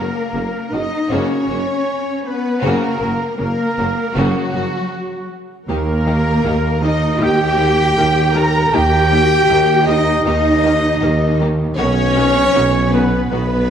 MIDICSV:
0, 0, Header, 1, 10, 480
1, 0, Start_track
1, 0, Tempo, 763359
1, 1658, Time_signature, 4, 2, 24, 8
1, 8615, End_track
2, 0, Start_track
2, 0, Title_t, "Trumpet section"
2, 0, Program_c, 0, 61
2, 0, Note_on_c, 0, 70, 84
2, 440, Note_off_c, 0, 70, 0
2, 458, Note_on_c, 0, 75, 86
2, 698, Note_off_c, 0, 75, 0
2, 702, Note_on_c, 0, 73, 84
2, 1420, Note_off_c, 0, 73, 0
2, 1421, Note_on_c, 0, 71, 82
2, 1660, Note_off_c, 0, 71, 0
2, 1662, Note_on_c, 0, 70, 94
2, 2033, Note_off_c, 0, 70, 0
2, 2140, Note_on_c, 0, 70, 92
2, 2608, Note_off_c, 0, 70, 0
2, 2623, Note_on_c, 0, 66, 93
2, 3326, Note_off_c, 0, 66, 0
2, 3580, Note_on_c, 0, 70, 106
2, 4272, Note_off_c, 0, 70, 0
2, 4298, Note_on_c, 0, 75, 106
2, 4535, Note_off_c, 0, 75, 0
2, 4539, Note_on_c, 0, 79, 121
2, 5258, Note_off_c, 0, 79, 0
2, 5258, Note_on_c, 0, 82, 113
2, 5497, Note_off_c, 0, 82, 0
2, 5497, Note_on_c, 0, 79, 127
2, 6201, Note_on_c, 0, 75, 120
2, 6210, Note_off_c, 0, 79, 0
2, 6435, Note_off_c, 0, 75, 0
2, 6443, Note_on_c, 0, 75, 117
2, 7151, Note_off_c, 0, 75, 0
2, 7401, Note_on_c, 0, 73, 127
2, 8100, Note_off_c, 0, 73, 0
2, 8125, Note_on_c, 0, 71, 102
2, 8359, Note_off_c, 0, 71, 0
2, 8366, Note_on_c, 0, 71, 108
2, 8615, Note_off_c, 0, 71, 0
2, 8615, End_track
3, 0, Start_track
3, 0, Title_t, "Violin section"
3, 0, Program_c, 1, 48
3, 0, Note_on_c, 1, 70, 73
3, 452, Note_off_c, 1, 70, 0
3, 456, Note_on_c, 1, 75, 76
3, 697, Note_off_c, 1, 75, 0
3, 702, Note_on_c, 1, 73, 69
3, 1415, Note_on_c, 1, 71, 76
3, 1420, Note_off_c, 1, 73, 0
3, 1648, Note_on_c, 1, 70, 82
3, 1652, Note_off_c, 1, 71, 0
3, 2130, Note_off_c, 1, 70, 0
3, 2137, Note_on_c, 1, 70, 84
3, 2607, Note_off_c, 1, 70, 0
3, 2616, Note_on_c, 1, 66, 84
3, 3337, Note_off_c, 1, 66, 0
3, 3574, Note_on_c, 1, 70, 91
3, 4269, Note_off_c, 1, 70, 0
3, 4293, Note_on_c, 1, 75, 90
3, 4533, Note_off_c, 1, 75, 0
3, 4535, Note_on_c, 1, 79, 105
3, 5241, Note_off_c, 1, 79, 0
3, 5242, Note_on_c, 1, 82, 106
3, 5489, Note_off_c, 1, 82, 0
3, 5491, Note_on_c, 1, 79, 111
3, 6193, Note_off_c, 1, 79, 0
3, 6200, Note_on_c, 1, 75, 100
3, 6430, Note_off_c, 1, 75, 0
3, 6437, Note_on_c, 1, 75, 100
3, 7148, Note_off_c, 1, 75, 0
3, 7399, Note_on_c, 1, 73, 127
3, 8099, Note_off_c, 1, 73, 0
3, 8118, Note_on_c, 1, 71, 96
3, 8352, Note_off_c, 1, 71, 0
3, 8360, Note_on_c, 1, 71, 101
3, 8615, Note_off_c, 1, 71, 0
3, 8615, End_track
4, 0, Start_track
4, 0, Title_t, "Violin section"
4, 0, Program_c, 2, 48
4, 209, Note_on_c, 2, 61, 46
4, 210, Note_on_c, 2, 58, 49
4, 260, Note_off_c, 2, 58, 0
4, 260, Note_off_c, 2, 61, 0
4, 454, Note_on_c, 2, 61, 48
4, 454, Note_on_c, 2, 66, 57
4, 504, Note_off_c, 2, 61, 0
4, 505, Note_off_c, 2, 66, 0
4, 690, Note_on_c, 2, 66, 64
4, 691, Note_on_c, 2, 61, 68
4, 917, Note_off_c, 2, 66, 0
4, 918, Note_off_c, 2, 61, 0
4, 931, Note_on_c, 2, 61, 56
4, 933, Note_on_c, 2, 66, 55
4, 981, Note_off_c, 2, 61, 0
4, 983, Note_off_c, 2, 66, 0
4, 1647, Note_on_c, 2, 66, 80
4, 1649, Note_on_c, 2, 61, 73
4, 1875, Note_off_c, 2, 66, 0
4, 1876, Note_off_c, 2, 61, 0
4, 1897, Note_on_c, 2, 61, 50
4, 1900, Note_on_c, 2, 66, 57
4, 1947, Note_off_c, 2, 61, 0
4, 1950, Note_off_c, 2, 66, 0
4, 2120, Note_on_c, 2, 58, 56
4, 2122, Note_on_c, 2, 61, 58
4, 2170, Note_off_c, 2, 58, 0
4, 2172, Note_off_c, 2, 61, 0
4, 2375, Note_on_c, 2, 61, 61
4, 2377, Note_on_c, 2, 66, 58
4, 2426, Note_off_c, 2, 61, 0
4, 2427, Note_off_c, 2, 66, 0
4, 2610, Note_on_c, 2, 66, 73
4, 2614, Note_on_c, 2, 61, 76
4, 2836, Note_off_c, 2, 66, 0
4, 2838, Note_off_c, 2, 61, 0
4, 2852, Note_on_c, 2, 61, 62
4, 2855, Note_on_c, 2, 66, 57
4, 2902, Note_off_c, 2, 61, 0
4, 2905, Note_off_c, 2, 66, 0
4, 3583, Note_on_c, 2, 67, 76
4, 3585, Note_on_c, 2, 63, 72
4, 3633, Note_off_c, 2, 67, 0
4, 3635, Note_off_c, 2, 63, 0
4, 3813, Note_on_c, 2, 67, 69
4, 3815, Note_on_c, 2, 63, 67
4, 3863, Note_off_c, 2, 67, 0
4, 3866, Note_off_c, 2, 63, 0
4, 4056, Note_on_c, 2, 67, 72
4, 4058, Note_on_c, 2, 63, 72
4, 4106, Note_off_c, 2, 67, 0
4, 4108, Note_off_c, 2, 63, 0
4, 4300, Note_on_c, 2, 63, 69
4, 4300, Note_on_c, 2, 67, 71
4, 4350, Note_off_c, 2, 67, 0
4, 4351, Note_off_c, 2, 63, 0
4, 4527, Note_on_c, 2, 63, 72
4, 4530, Note_on_c, 2, 67, 74
4, 4578, Note_off_c, 2, 63, 0
4, 4580, Note_off_c, 2, 67, 0
4, 4773, Note_on_c, 2, 63, 69
4, 4779, Note_on_c, 2, 67, 69
4, 4823, Note_off_c, 2, 63, 0
4, 4829, Note_off_c, 2, 67, 0
4, 5012, Note_on_c, 2, 63, 71
4, 5013, Note_on_c, 2, 67, 72
4, 5063, Note_off_c, 2, 63, 0
4, 5063, Note_off_c, 2, 67, 0
4, 5257, Note_on_c, 2, 63, 71
4, 5258, Note_on_c, 2, 67, 72
4, 5308, Note_off_c, 2, 63, 0
4, 5308, Note_off_c, 2, 67, 0
4, 5493, Note_on_c, 2, 63, 82
4, 5493, Note_on_c, 2, 67, 84
4, 5543, Note_off_c, 2, 63, 0
4, 5543, Note_off_c, 2, 67, 0
4, 5727, Note_on_c, 2, 63, 76
4, 5732, Note_on_c, 2, 67, 74
4, 5778, Note_off_c, 2, 63, 0
4, 5782, Note_off_c, 2, 67, 0
4, 5971, Note_on_c, 2, 63, 78
4, 5971, Note_on_c, 2, 67, 74
4, 6021, Note_off_c, 2, 67, 0
4, 6022, Note_off_c, 2, 63, 0
4, 6211, Note_on_c, 2, 67, 78
4, 6213, Note_on_c, 2, 63, 74
4, 6262, Note_off_c, 2, 67, 0
4, 6264, Note_off_c, 2, 63, 0
4, 6450, Note_on_c, 2, 63, 81
4, 6450, Note_on_c, 2, 67, 82
4, 6500, Note_off_c, 2, 63, 0
4, 6500, Note_off_c, 2, 67, 0
4, 6693, Note_on_c, 2, 63, 76
4, 6696, Note_on_c, 2, 67, 76
4, 6743, Note_off_c, 2, 63, 0
4, 6746, Note_off_c, 2, 67, 0
4, 6922, Note_on_c, 2, 67, 78
4, 6924, Note_on_c, 2, 63, 75
4, 6973, Note_off_c, 2, 67, 0
4, 6974, Note_off_c, 2, 63, 0
4, 7167, Note_on_c, 2, 67, 70
4, 7168, Note_on_c, 2, 63, 70
4, 7217, Note_off_c, 2, 67, 0
4, 7219, Note_off_c, 2, 63, 0
4, 7405, Note_on_c, 2, 66, 88
4, 7408, Note_on_c, 2, 63, 83
4, 7455, Note_off_c, 2, 66, 0
4, 7459, Note_off_c, 2, 63, 0
4, 7642, Note_on_c, 2, 63, 73
4, 7643, Note_on_c, 2, 66, 70
4, 7692, Note_off_c, 2, 63, 0
4, 7693, Note_off_c, 2, 66, 0
4, 7889, Note_on_c, 2, 66, 75
4, 7890, Note_on_c, 2, 63, 74
4, 7939, Note_off_c, 2, 66, 0
4, 7941, Note_off_c, 2, 63, 0
4, 8134, Note_on_c, 2, 66, 73
4, 8135, Note_on_c, 2, 63, 69
4, 8184, Note_off_c, 2, 66, 0
4, 8185, Note_off_c, 2, 63, 0
4, 8371, Note_on_c, 2, 66, 75
4, 8376, Note_on_c, 2, 63, 73
4, 8422, Note_off_c, 2, 66, 0
4, 8426, Note_off_c, 2, 63, 0
4, 8615, End_track
5, 0, Start_track
5, 0, Title_t, "Cello section"
5, 0, Program_c, 3, 48
5, 0, Note_on_c, 3, 58, 71
5, 441, Note_off_c, 3, 58, 0
5, 461, Note_on_c, 3, 63, 75
5, 695, Note_off_c, 3, 63, 0
5, 700, Note_on_c, 3, 61, 65
5, 1419, Note_off_c, 3, 61, 0
5, 1420, Note_on_c, 3, 59, 72
5, 1659, Note_off_c, 3, 59, 0
5, 1664, Note_on_c, 3, 58, 76
5, 2131, Note_off_c, 3, 58, 0
5, 2139, Note_on_c, 3, 58, 76
5, 2608, Note_off_c, 3, 58, 0
5, 2620, Note_on_c, 3, 54, 76
5, 3339, Note_off_c, 3, 54, 0
5, 3579, Note_on_c, 3, 58, 86
5, 4271, Note_off_c, 3, 58, 0
5, 4293, Note_on_c, 3, 63, 90
5, 4528, Note_off_c, 3, 63, 0
5, 4535, Note_on_c, 3, 67, 107
5, 5256, Note_off_c, 3, 67, 0
5, 5256, Note_on_c, 3, 70, 103
5, 5496, Note_off_c, 3, 70, 0
5, 5496, Note_on_c, 3, 67, 108
5, 6208, Note_on_c, 3, 63, 99
5, 6210, Note_off_c, 3, 67, 0
5, 6433, Note_off_c, 3, 63, 0
5, 6441, Note_on_c, 3, 63, 100
5, 7150, Note_off_c, 3, 63, 0
5, 7404, Note_on_c, 3, 61, 115
5, 8101, Note_off_c, 3, 61, 0
5, 8130, Note_on_c, 3, 59, 87
5, 8360, Note_off_c, 3, 59, 0
5, 8368, Note_on_c, 3, 59, 91
5, 8615, Note_off_c, 3, 59, 0
5, 8615, End_track
6, 0, Start_track
6, 0, Title_t, "French horn section"
6, 0, Program_c, 4, 60
6, 0, Note_on_c, 4, 58, 77
6, 443, Note_off_c, 4, 58, 0
6, 443, Note_on_c, 4, 63, 78
6, 691, Note_off_c, 4, 63, 0
6, 692, Note_on_c, 4, 61, 65
6, 1307, Note_off_c, 4, 61, 0
6, 1414, Note_on_c, 4, 59, 68
6, 1649, Note_on_c, 4, 58, 82
6, 1651, Note_off_c, 4, 59, 0
6, 2122, Note_off_c, 4, 58, 0
6, 2134, Note_on_c, 4, 58, 82
6, 2605, Note_off_c, 4, 58, 0
6, 2615, Note_on_c, 4, 54, 75
6, 3337, Note_off_c, 4, 54, 0
6, 3569, Note_on_c, 4, 58, 101
6, 4266, Note_off_c, 4, 58, 0
6, 4293, Note_on_c, 4, 63, 94
6, 4531, Note_on_c, 4, 67, 103
6, 4532, Note_off_c, 4, 63, 0
6, 5254, Note_off_c, 4, 67, 0
6, 5254, Note_on_c, 4, 70, 93
6, 5491, Note_off_c, 4, 70, 0
6, 5495, Note_on_c, 4, 67, 121
6, 6192, Note_on_c, 4, 63, 99
6, 6209, Note_off_c, 4, 67, 0
6, 6421, Note_off_c, 4, 63, 0
6, 6428, Note_on_c, 4, 63, 97
6, 7144, Note_off_c, 4, 63, 0
6, 7398, Note_on_c, 4, 61, 127
6, 8098, Note_off_c, 4, 61, 0
6, 8120, Note_on_c, 4, 59, 83
6, 8357, Note_off_c, 4, 59, 0
6, 8365, Note_on_c, 4, 59, 101
6, 8615, Note_off_c, 4, 59, 0
6, 8615, End_track
7, 0, Start_track
7, 0, Title_t, "Trombone section"
7, 0, Program_c, 5, 61
7, 0, Note_on_c, 5, 58, 75
7, 449, Note_on_c, 5, 63, 75
7, 456, Note_off_c, 5, 58, 0
7, 690, Note_on_c, 5, 61, 67
7, 694, Note_off_c, 5, 63, 0
7, 1414, Note_off_c, 5, 61, 0
7, 1422, Note_on_c, 5, 59, 77
7, 1660, Note_off_c, 5, 59, 0
7, 1670, Note_on_c, 5, 58, 85
7, 2036, Note_off_c, 5, 58, 0
7, 2143, Note_on_c, 5, 58, 79
7, 2610, Note_off_c, 5, 58, 0
7, 2615, Note_on_c, 5, 54, 82
7, 3322, Note_off_c, 5, 54, 0
7, 3577, Note_on_c, 5, 58, 99
7, 4270, Note_off_c, 5, 58, 0
7, 4300, Note_on_c, 5, 63, 89
7, 4531, Note_off_c, 5, 63, 0
7, 4539, Note_on_c, 5, 67, 109
7, 5250, Note_on_c, 5, 70, 99
7, 5258, Note_off_c, 5, 67, 0
7, 5490, Note_on_c, 5, 67, 112
7, 5494, Note_off_c, 5, 70, 0
7, 6206, Note_off_c, 5, 67, 0
7, 6209, Note_on_c, 5, 63, 99
7, 6436, Note_off_c, 5, 63, 0
7, 6443, Note_on_c, 5, 63, 102
7, 7151, Note_off_c, 5, 63, 0
7, 7413, Note_on_c, 5, 61, 127
7, 8106, Note_off_c, 5, 61, 0
7, 8121, Note_on_c, 5, 59, 95
7, 8358, Note_off_c, 5, 59, 0
7, 8365, Note_on_c, 5, 59, 98
7, 8615, Note_off_c, 5, 59, 0
7, 8615, End_track
8, 0, Start_track
8, 0, Title_t, "Viola section"
8, 0, Program_c, 6, 48
8, 211, Note_on_c, 6, 49, 48
8, 215, Note_on_c, 6, 58, 53
8, 262, Note_off_c, 6, 49, 0
8, 265, Note_off_c, 6, 58, 0
8, 464, Note_on_c, 6, 49, 53
8, 464, Note_on_c, 6, 58, 46
8, 515, Note_off_c, 6, 49, 0
8, 515, Note_off_c, 6, 58, 0
8, 700, Note_on_c, 6, 49, 61
8, 704, Note_on_c, 6, 58, 62
8, 922, Note_off_c, 6, 49, 0
8, 924, Note_off_c, 6, 58, 0
8, 948, Note_on_c, 6, 58, 57
8, 949, Note_on_c, 6, 49, 46
8, 999, Note_off_c, 6, 49, 0
8, 999, Note_off_c, 6, 58, 0
8, 1665, Note_on_c, 6, 49, 69
8, 1667, Note_on_c, 6, 58, 76
8, 1884, Note_off_c, 6, 49, 0
8, 1885, Note_off_c, 6, 58, 0
8, 1901, Note_on_c, 6, 58, 51
8, 1902, Note_on_c, 6, 49, 55
8, 1952, Note_off_c, 6, 58, 0
8, 1953, Note_off_c, 6, 49, 0
8, 2133, Note_on_c, 6, 58, 57
8, 2134, Note_on_c, 6, 49, 55
8, 2183, Note_off_c, 6, 58, 0
8, 2184, Note_off_c, 6, 49, 0
8, 2379, Note_on_c, 6, 58, 56
8, 2380, Note_on_c, 6, 49, 57
8, 2429, Note_off_c, 6, 58, 0
8, 2430, Note_off_c, 6, 49, 0
8, 2615, Note_on_c, 6, 58, 73
8, 2617, Note_on_c, 6, 49, 77
8, 2839, Note_off_c, 6, 58, 0
8, 2840, Note_off_c, 6, 49, 0
8, 2861, Note_on_c, 6, 49, 59
8, 2861, Note_on_c, 6, 58, 60
8, 2911, Note_off_c, 6, 49, 0
8, 2911, Note_off_c, 6, 58, 0
8, 3575, Note_on_c, 6, 58, 69
8, 3576, Note_on_c, 6, 51, 74
8, 3625, Note_off_c, 6, 58, 0
8, 3627, Note_off_c, 6, 51, 0
8, 3813, Note_on_c, 6, 51, 66
8, 3815, Note_on_c, 6, 58, 65
8, 3864, Note_off_c, 6, 51, 0
8, 3865, Note_off_c, 6, 58, 0
8, 4048, Note_on_c, 6, 51, 71
8, 4048, Note_on_c, 6, 58, 71
8, 4098, Note_off_c, 6, 51, 0
8, 4098, Note_off_c, 6, 58, 0
8, 4282, Note_on_c, 6, 51, 64
8, 4284, Note_on_c, 6, 58, 65
8, 4332, Note_off_c, 6, 51, 0
8, 4335, Note_off_c, 6, 58, 0
8, 4529, Note_on_c, 6, 51, 72
8, 4531, Note_on_c, 6, 58, 74
8, 4579, Note_off_c, 6, 51, 0
8, 4581, Note_off_c, 6, 58, 0
8, 4761, Note_on_c, 6, 58, 69
8, 4763, Note_on_c, 6, 51, 70
8, 4811, Note_off_c, 6, 58, 0
8, 4813, Note_off_c, 6, 51, 0
8, 5012, Note_on_c, 6, 58, 78
8, 5013, Note_on_c, 6, 51, 77
8, 5063, Note_off_c, 6, 51, 0
8, 5063, Note_off_c, 6, 58, 0
8, 5246, Note_on_c, 6, 51, 70
8, 5246, Note_on_c, 6, 58, 72
8, 5296, Note_off_c, 6, 51, 0
8, 5297, Note_off_c, 6, 58, 0
8, 5491, Note_on_c, 6, 58, 78
8, 5494, Note_on_c, 6, 51, 80
8, 5541, Note_off_c, 6, 58, 0
8, 5544, Note_off_c, 6, 51, 0
8, 5735, Note_on_c, 6, 51, 69
8, 5736, Note_on_c, 6, 58, 74
8, 5786, Note_off_c, 6, 51, 0
8, 5786, Note_off_c, 6, 58, 0
8, 5970, Note_on_c, 6, 58, 77
8, 5971, Note_on_c, 6, 51, 79
8, 6020, Note_off_c, 6, 58, 0
8, 6022, Note_off_c, 6, 51, 0
8, 6211, Note_on_c, 6, 51, 72
8, 6211, Note_on_c, 6, 58, 71
8, 6261, Note_off_c, 6, 58, 0
8, 6262, Note_off_c, 6, 51, 0
8, 6448, Note_on_c, 6, 51, 78
8, 6449, Note_on_c, 6, 58, 78
8, 6499, Note_off_c, 6, 51, 0
8, 6499, Note_off_c, 6, 58, 0
8, 6690, Note_on_c, 6, 51, 75
8, 6692, Note_on_c, 6, 58, 71
8, 6741, Note_off_c, 6, 51, 0
8, 6743, Note_off_c, 6, 58, 0
8, 6933, Note_on_c, 6, 58, 78
8, 6934, Note_on_c, 6, 51, 80
8, 6983, Note_off_c, 6, 58, 0
8, 6984, Note_off_c, 6, 51, 0
8, 7168, Note_on_c, 6, 58, 74
8, 7169, Note_on_c, 6, 51, 75
8, 7218, Note_off_c, 6, 58, 0
8, 7220, Note_off_c, 6, 51, 0
8, 7408, Note_on_c, 6, 59, 76
8, 7409, Note_on_c, 6, 51, 83
8, 7459, Note_off_c, 6, 51, 0
8, 7459, Note_off_c, 6, 59, 0
8, 7648, Note_on_c, 6, 51, 68
8, 7650, Note_on_c, 6, 59, 74
8, 7698, Note_off_c, 6, 51, 0
8, 7700, Note_off_c, 6, 59, 0
8, 7891, Note_on_c, 6, 51, 76
8, 7892, Note_on_c, 6, 59, 77
8, 7942, Note_off_c, 6, 51, 0
8, 7943, Note_off_c, 6, 59, 0
8, 8133, Note_on_c, 6, 59, 70
8, 8134, Note_on_c, 6, 51, 64
8, 8184, Note_off_c, 6, 51, 0
8, 8184, Note_off_c, 6, 59, 0
8, 8373, Note_on_c, 6, 59, 70
8, 8374, Note_on_c, 6, 51, 68
8, 8424, Note_off_c, 6, 59, 0
8, 8425, Note_off_c, 6, 51, 0
8, 8615, End_track
9, 0, Start_track
9, 0, Title_t, "Double bass section"
9, 0, Program_c, 7, 48
9, 214, Note_on_c, 7, 30, 50
9, 264, Note_off_c, 7, 30, 0
9, 454, Note_on_c, 7, 30, 50
9, 505, Note_off_c, 7, 30, 0
9, 694, Note_on_c, 7, 30, 74
9, 744, Note_off_c, 7, 30, 0
9, 935, Note_on_c, 7, 30, 52
9, 985, Note_off_c, 7, 30, 0
9, 1656, Note_on_c, 7, 30, 80
9, 1707, Note_off_c, 7, 30, 0
9, 1899, Note_on_c, 7, 30, 55
9, 1949, Note_off_c, 7, 30, 0
9, 2141, Note_on_c, 7, 30, 54
9, 2191, Note_off_c, 7, 30, 0
9, 2381, Note_on_c, 7, 30, 55
9, 2431, Note_off_c, 7, 30, 0
9, 2618, Note_on_c, 7, 30, 92
9, 2669, Note_off_c, 7, 30, 0
9, 2856, Note_on_c, 7, 30, 59
9, 2906, Note_off_c, 7, 30, 0
9, 3577, Note_on_c, 7, 39, 92
9, 4000, Note_off_c, 7, 39, 0
9, 4055, Note_on_c, 7, 39, 85
9, 4477, Note_off_c, 7, 39, 0
9, 4536, Note_on_c, 7, 39, 93
9, 4957, Note_off_c, 7, 39, 0
9, 5016, Note_on_c, 7, 39, 82
9, 5441, Note_off_c, 7, 39, 0
9, 5497, Note_on_c, 7, 39, 105
9, 5917, Note_off_c, 7, 39, 0
9, 5971, Note_on_c, 7, 39, 94
9, 6390, Note_off_c, 7, 39, 0
9, 6445, Note_on_c, 7, 39, 100
9, 6869, Note_off_c, 7, 39, 0
9, 6925, Note_on_c, 7, 39, 90
9, 7350, Note_off_c, 7, 39, 0
9, 7404, Note_on_c, 7, 35, 105
9, 7829, Note_off_c, 7, 35, 0
9, 7886, Note_on_c, 7, 35, 92
9, 8312, Note_off_c, 7, 35, 0
9, 8369, Note_on_c, 7, 35, 90
9, 8615, Note_off_c, 7, 35, 0
9, 8615, End_track
10, 0, Start_track
10, 0, Title_t, "Tuba"
10, 0, Program_c, 8, 58
10, 0, Note_on_c, 8, 30, 47
10, 71, Note_off_c, 8, 30, 0
10, 214, Note_on_c, 8, 30, 48
10, 310, Note_off_c, 8, 30, 0
10, 456, Note_on_c, 8, 30, 51
10, 553, Note_off_c, 8, 30, 0
10, 698, Note_on_c, 8, 30, 67
10, 794, Note_off_c, 8, 30, 0
10, 940, Note_on_c, 8, 30, 50
10, 1036, Note_off_c, 8, 30, 0
10, 1659, Note_on_c, 8, 30, 76
10, 1755, Note_off_c, 8, 30, 0
10, 1904, Note_on_c, 8, 30, 55
10, 1998, Note_off_c, 8, 30, 0
10, 2138, Note_on_c, 8, 30, 58
10, 2234, Note_off_c, 8, 30, 0
10, 2379, Note_on_c, 8, 30, 58
10, 2475, Note_off_c, 8, 30, 0
10, 2615, Note_on_c, 8, 30, 79
10, 2711, Note_off_c, 8, 30, 0
10, 2860, Note_on_c, 8, 30, 58
10, 2955, Note_off_c, 8, 30, 0
10, 3578, Note_on_c, 8, 39, 91
10, 4000, Note_off_c, 8, 39, 0
10, 4055, Note_on_c, 8, 39, 79
10, 4477, Note_off_c, 8, 39, 0
10, 4533, Note_on_c, 8, 39, 90
10, 4956, Note_off_c, 8, 39, 0
10, 5009, Note_on_c, 8, 39, 89
10, 5437, Note_off_c, 8, 39, 0
10, 5492, Note_on_c, 8, 39, 92
10, 5914, Note_off_c, 8, 39, 0
10, 5967, Note_on_c, 8, 39, 97
10, 6388, Note_off_c, 8, 39, 0
10, 6441, Note_on_c, 8, 39, 97
10, 6867, Note_off_c, 8, 39, 0
10, 6923, Note_on_c, 8, 39, 92
10, 7349, Note_off_c, 8, 39, 0
10, 7401, Note_on_c, 8, 35, 95
10, 7828, Note_off_c, 8, 35, 0
10, 7885, Note_on_c, 8, 35, 89
10, 8261, Note_off_c, 8, 35, 0
10, 8368, Note_on_c, 8, 35, 90
10, 8615, Note_off_c, 8, 35, 0
10, 8615, End_track
0, 0, End_of_file